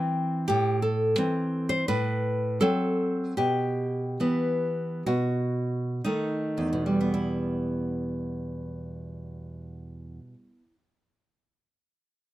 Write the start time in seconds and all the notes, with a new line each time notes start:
Already playing: E3 C4 G5
0.48 A2 G4
0.82 A4
1.18 E3 C4
1.69 C5
1.88 A2 B4
2.61 F#3 C4 A4
3.37 B2 G4
4.20 E3 B3
5.06 B2 F#4
6.04 D#3 A3 D#4
6.58 E2
6.73 B2
6.86 G3
7.01 B3
7.14 E4